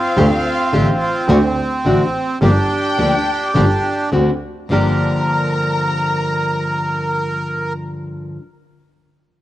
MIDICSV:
0, 0, Header, 1, 5, 480
1, 0, Start_track
1, 0, Key_signature, -2, "minor"
1, 0, Tempo, 565504
1, 145, Time_signature, 4, 2, 24, 8
1, 7994, End_track
2, 0, Start_track
2, 0, Title_t, "Violin section"
2, 0, Program_c, 0, 48
2, 0, Note_on_c, 0, 77, 88
2, 1066, Note_off_c, 0, 77, 0
2, 2055, Note_on_c, 0, 79, 108
2, 3469, Note_off_c, 0, 79, 0
2, 3986, Note_on_c, 0, 82, 87
2, 6551, Note_off_c, 0, 82, 0
2, 7994, End_track
3, 0, Start_track
3, 0, Title_t, "Bandoneon"
3, 0, Program_c, 1, 23
3, 0, Note_on_c, 1, 60, 91
3, 0, Note_on_c, 1, 65, 120
3, 1069, Note_off_c, 1, 65, 0
3, 2026, Note_off_c, 1, 60, 0
3, 2070, Note_on_c, 1, 67, 123
3, 2080, Note_on_c, 1, 62, 97
3, 3477, Note_off_c, 1, 67, 0
3, 3481, Note_off_c, 1, 62, 0
3, 4005, Note_on_c, 1, 70, 101
3, 6560, Note_off_c, 1, 70, 0
3, 7994, End_track
4, 0, Start_track
4, 0, Title_t, "Nylon-string guitar"
4, 0, Program_c, 2, 24
4, 141, Note_on_c, 2, 50, 85
4, 145, Note_on_c, 2, 57, 84
4, 149, Note_on_c, 2, 62, 89
4, 151, Note_on_c, 2, 67, 106
4, 218, Note_off_c, 2, 50, 0
4, 220, Note_off_c, 2, 57, 0
4, 222, Note_off_c, 2, 62, 0
4, 223, Note_off_c, 2, 67, 0
4, 618, Note_on_c, 2, 50, 74
4, 620, Note_on_c, 2, 57, 78
4, 623, Note_on_c, 2, 62, 84
4, 627, Note_on_c, 2, 67, 84
4, 761, Note_off_c, 2, 50, 0
4, 762, Note_off_c, 2, 57, 0
4, 764, Note_off_c, 2, 62, 0
4, 766, Note_off_c, 2, 67, 0
4, 1092, Note_on_c, 2, 50, 93
4, 1095, Note_on_c, 2, 57, 109
4, 1100, Note_on_c, 2, 62, 101
4, 1101, Note_on_c, 2, 66, 100
4, 1170, Note_off_c, 2, 50, 0
4, 1171, Note_off_c, 2, 57, 0
4, 1174, Note_off_c, 2, 62, 0
4, 1174, Note_off_c, 2, 66, 0
4, 1569, Note_on_c, 2, 50, 77
4, 1576, Note_on_c, 2, 57, 66
4, 1578, Note_on_c, 2, 62, 76
4, 1581, Note_on_c, 2, 66, 81
4, 1713, Note_off_c, 2, 50, 0
4, 1717, Note_off_c, 2, 57, 0
4, 1718, Note_off_c, 2, 62, 0
4, 1719, Note_off_c, 2, 66, 0
4, 2051, Note_on_c, 2, 50, 83
4, 2053, Note_on_c, 2, 53, 84
4, 2057, Note_on_c, 2, 58, 89
4, 2059, Note_on_c, 2, 62, 91
4, 2062, Note_on_c, 2, 67, 89
4, 2127, Note_off_c, 2, 50, 0
4, 2128, Note_off_c, 2, 53, 0
4, 2130, Note_off_c, 2, 58, 0
4, 2131, Note_off_c, 2, 62, 0
4, 2132, Note_off_c, 2, 67, 0
4, 2528, Note_on_c, 2, 50, 72
4, 2533, Note_on_c, 2, 58, 76
4, 2535, Note_on_c, 2, 53, 77
4, 2537, Note_on_c, 2, 62, 78
4, 2539, Note_on_c, 2, 67, 80
4, 2673, Note_off_c, 2, 50, 0
4, 2676, Note_off_c, 2, 58, 0
4, 2677, Note_off_c, 2, 53, 0
4, 2677, Note_off_c, 2, 62, 0
4, 2678, Note_off_c, 2, 67, 0
4, 3011, Note_on_c, 2, 50, 89
4, 3016, Note_on_c, 2, 53, 88
4, 3017, Note_on_c, 2, 58, 97
4, 3019, Note_on_c, 2, 62, 93
4, 3020, Note_on_c, 2, 67, 105
4, 3089, Note_off_c, 2, 50, 0
4, 3092, Note_off_c, 2, 53, 0
4, 3092, Note_off_c, 2, 58, 0
4, 3093, Note_off_c, 2, 62, 0
4, 3094, Note_off_c, 2, 67, 0
4, 3496, Note_on_c, 2, 50, 71
4, 3500, Note_on_c, 2, 57, 64
4, 3505, Note_on_c, 2, 60, 69
4, 3508, Note_on_c, 2, 66, 72
4, 3644, Note_off_c, 2, 50, 0
4, 3646, Note_off_c, 2, 57, 0
4, 3648, Note_off_c, 2, 60, 0
4, 3650, Note_off_c, 2, 66, 0
4, 3982, Note_on_c, 2, 43, 83
4, 3991, Note_on_c, 2, 50, 75
4, 3996, Note_on_c, 2, 53, 92
4, 3999, Note_on_c, 2, 58, 89
4, 4005, Note_on_c, 2, 62, 80
4, 4011, Note_on_c, 2, 67, 83
4, 7103, Note_off_c, 2, 43, 0
4, 7112, Note_off_c, 2, 50, 0
4, 7118, Note_off_c, 2, 53, 0
4, 7121, Note_off_c, 2, 58, 0
4, 7127, Note_off_c, 2, 62, 0
4, 7132, Note_off_c, 2, 67, 0
4, 7994, End_track
5, 0, Start_track
5, 0, Title_t, "Double bass"
5, 0, Program_c, 3, 43
5, 146, Note_on_c, 3, 38, 106
5, 346, Note_off_c, 3, 38, 0
5, 618, Note_on_c, 3, 33, 72
5, 820, Note_off_c, 3, 33, 0
5, 1089, Note_on_c, 3, 38, 104
5, 1293, Note_off_c, 3, 38, 0
5, 1569, Note_on_c, 3, 33, 70
5, 1772, Note_off_c, 3, 33, 0
5, 2049, Note_on_c, 3, 31, 104
5, 2252, Note_off_c, 3, 31, 0
5, 2532, Note_on_c, 3, 38, 67
5, 2734, Note_off_c, 3, 38, 0
5, 3013, Note_on_c, 3, 31, 98
5, 3218, Note_off_c, 3, 31, 0
5, 3503, Note_on_c, 3, 38, 61
5, 3707, Note_off_c, 3, 38, 0
5, 3996, Note_on_c, 3, 31, 60
5, 4194, Note_off_c, 3, 31, 0
5, 7994, End_track
0, 0, End_of_file